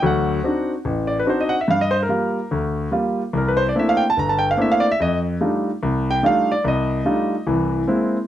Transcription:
0.02 0.38 D2 medium
0.02 0.38 F#3 medium
0.02 0.69 F#5 medium
0.44 0.73 C4 medium
0.44 0.73 D4 soft
0.44 0.73 D#4 soft
0.44 0.73 F#4 medium
0.85 1.21 A1 medium
1.07 1.17 D5 medium
1.19 1.26 B4 medium
1.26 1.55 C4 medium
1.26 1.55 D4 soft
1.26 1.56 D#4 medium
1.26 1.56 F#4 medium
1.26 1.41 C5 medium
1.40 1.54 D#5 medium
1.49 1.58 F#5 medium
1.61 1.68 E5 medium
1.68 2.04 G2 medium
1.68 1.83 F5 medium
1.81 1.95 D#5 medium
1.91 2.00 C5 loud
2.03 2.61 A#4 medium
2.09 2.38 G3 medium
2.09 2.38 A#3 soft
2.09 2.38 F4 medium
2.51 2.87 D2 medium
2.92 3.21 G3 medium
2.92 3.21 A#3 soft
2.92 3.21 F4 medium
3.33 3.69 C2 medium
3.33 3.49 A#4 medium
3.48 3.61 B4 medium
3.57 3.65 C5 medium
3.69 3.75 D5 medium
3.75 4.04 A3 medium
3.75 4.04 A#3 medium
3.75 4.04 C4 medium
3.75 4.04 D4 medium
3.75 4.04 E4 medium
3.79 3.90 E5 medium
3.89 4.02 F5 medium
3.97 4.06 G5 medium
4.10 4.16 A5 medium
4.17 4.52 G1 medium
4.17 4.31 A#5 medium
4.29 4.43 A5 medium
4.39 4.48 G5 loud
4.51 4.57 F5 medium
4.57 4.86 A3 medium
4.57 4.86 A#3 medium
4.57 4.86 C4 medium
4.57 4.86 D4 medium
4.57 4.87 E4 medium
4.61 4.73 E5 medium
4.72 4.85 F5 medium
4.80 4.89 D5 medium
4.91 4.98 E5 medium
5.00 5.35 F2 medium
5.00 5.17 D#5 medium
5.41 5.69 G3 medium
5.41 5.69 A3 medium
5.41 5.69 D4 medium
5.41 5.69 D#4 medium
5.41 5.69 F4 medium
5.83 6.18 C2 medium
6.11 6.23 G5 medium
6.23 6.51 G3 medium
6.23 6.51 A3 medium
6.23 6.51 D4 soft
6.23 6.52 D#4 medium
6.23 6.52 F4 medium
6.23 6.51 F5 medium
6.52 6.64 D5 medium
6.64 7.00 C2 medium
6.64 7.44 D#5 medium
7.05 7.34 G3 medium
7.05 7.34 A3 medium
7.05 7.34 D4 medium
7.05 7.34 D#4 medium
7.05 7.34 F4 medium
7.47 7.82 C2 medium
7.47 7.82 E3 medium
7.87 8.16 G#3 medium
7.87 8.16 A#3 medium
7.87 8.16 C4 medium
7.87 8.16 E4 medium

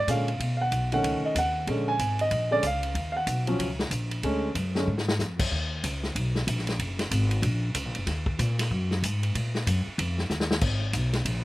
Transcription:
0.07 0.39 A#2 medium
0.07 0.26 D3 soft
0.07 0.26 G#3 soft
0.07 0.26 C#4 soft
0.07 0.56 F5 medium
0.07 kick soft
0.07 hi-hat pedal medium
0.07 ride medium
0.28 ride soft
0.40 0.71 B2 medium
0.40 kick soft
0.40 ride medium
0.57 0.59 F5 medium
0.62 0.90 F#5 medium
0.71 1.02 B1 medium
0.71 kick soft
0.71 hi-hat pedal soft
0.71 ride medium
0.92 1.34 D#3 soft
0.92 1.34 A3 soft
0.92 1.34 C#4 medium
0.92 1.22 F#5 medium
0.92 ride soft
1.03 1.22 C#2 medium
1.03 kick soft
1.03 ride medium
1.22 1.36 D#5 medium
1.22 muted upright bass stroke soft
1.35 1.66 D#2 loud
1.35 1.67 F#5 medium
1.35 kick soft
1.35 hi-hat pedal medium
1.35 ride medium
1.67 1.98 A#1 medium
1.67 1.91 D3 soft
1.67 1.91 G#3 soft
1.67 1.92 C#4 medium
1.67 kick soft
1.67 ride medium
1.88 2.17 G#5 medium
1.99 2.30 G#1 medium
1.99 kick soft
1.99 hi-hat pedal medium
1.99 ride medium
2.19 2.50 D#5 medium
2.19 ride soft
2.31 2.62 A#1 medium
2.31 kick soft
2.31 ride medium
2.51 2.62 D3 soft
2.51 2.62 G#3 soft
2.51 2.63 C#4 soft
2.51 2.64 D5 medium
2.63 2.94 C#2 medium
2.63 3.11 F5 medium
2.63 kick soft
2.63 hi-hat pedal medium
2.63 ride medium
2.83 ride medium
2.95 3.26 D#2 medium
2.95 kick soft
2.95 ride medium
3.12 3.14 F5 medium
3.17 3.46 F#5 medium
3.27 3.58 B1 loud
3.27 kick soft
3.27 hi-hat pedal medium
3.27 ride medium
3.47 3.66 F3 medium
3.47 3.67 F#3 soft
3.47 3.67 C#4 medium
3.47 ride soft
3.59 3.90 C#2 loud
3.59 kick soft
3.59 ride medium
3.79 snare medium
3.90 4.22 A#1 medium
3.90 kick soft
3.90 hi-hat pedal medium
3.90 ride medium
4.11 ride medium
4.23 4.54 D2 medium
4.23 4.47 D3 medium
4.23 4.47 G#3 soft
4.23 4.47 C#4 medium
4.23 kick soft
4.23 ride medium
4.55 4.86 F#2 loud
4.55 kick soft
4.55 hi-hat pedal medium
4.55 ride medium
4.75 4.87 D3 soft
4.75 4.87 G#3 soft
4.75 4.87 C#4 medium
4.75 snare medium
4.87 5.18 G#2 loud
4.98 snare medium
5.08 snare loud
5.19 5.50 F2 medium
5.19 snare medium
5.19 hi-hat pedal medium
5.39 kick medium
5.39 crash medium
5.51 5.82 D#2 medium
5.51 kick soft
5.84 6.14 C#2 loud
5.84 kick soft
5.84 hi-hat pedal medium
5.84 ride medium
6.03 snare soft
6.15 6.46 B1 medium
6.15 kick soft
6.15 ride medium
6.35 snare medium
6.47 6.78 A#1 loud
6.47 kick soft
6.47 hi-hat pedal medium
6.47 ride medium
6.58 snare soft
6.67 snare medium
6.67 ride medium
6.79 7.10 F#1 medium
6.79 kick soft
6.79 ride medium
6.99 snare medium
6.99 ride medium
7.11 7.42 G#1 loud
7.11 kick soft
7.11 hi-hat pedal medium
7.11 ride medium
7.31 ride medium
7.42 7.73 A#1 loud
7.42 kick soft
7.42 ride medium
7.74 7.85 C#2 medium
7.74 kick soft
7.74 hi-hat pedal medium
7.74 ride medium
7.85 7.95 A#1 medium
7.95 8.06 F#1 medium
7.95 ride medium
8.06 8.37 D#2 medium
8.06 kick soft
8.06 snare soft
8.06 ride medium
8.26 kick medium
8.39 8.69 A#2 loud
8.39 kick soft
8.39 hi-hat pedal medium
8.39 ride medium
8.59 snare soft
8.59 ride medium
8.71 9.01 F#2 loud
8.71 kick soft
8.91 snare medium
9.02 9.33 G#2 loud
9.02 kick soft
9.02 hi-hat pedal medium
9.02 ride medium
9.23 ride medium
9.35 9.65 A#2 medium
9.35 kick soft
9.35 ride medium
9.55 snare medium
9.66 9.84 F#2 loud
9.66 kick soft
9.66 hi-hat pedal medium
9.66 ride medium
9.87 muted upright bass stroke soft
9.98 10.29 F2 loud
9.98 kick soft
9.98 ride medium
10.18 snare soft
10.30 10.60 D#2 loud
10.30 snare medium
10.30 hi-hat pedal medium
10.40 snare medium
10.51 snare loud
10.61 10.92 G#1 medium
10.61 kick medium
10.61 crash medium
10.93 11.24 B1 loud
10.93 kick soft
10.93 hi-hat pedal medium
10.93 ride medium
11.13 snare medium
11.13 ride medium
11.25 11.44 A#1 loud
11.25 kick soft
11.25 ride medium

